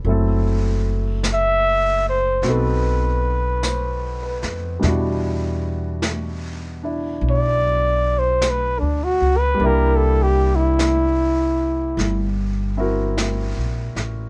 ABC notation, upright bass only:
X:1
M:4/4
L:1/8
Q:"Swing" 1/4=50
K:Em
V:1 name="Upright bass" clef=bass
F,,,4 B,,,3 =F,, | E,,4 B,,,2- (3B,,, D,, ^C,, | C,,4 G,,,2- (3G,,, _B,,, A,,, |]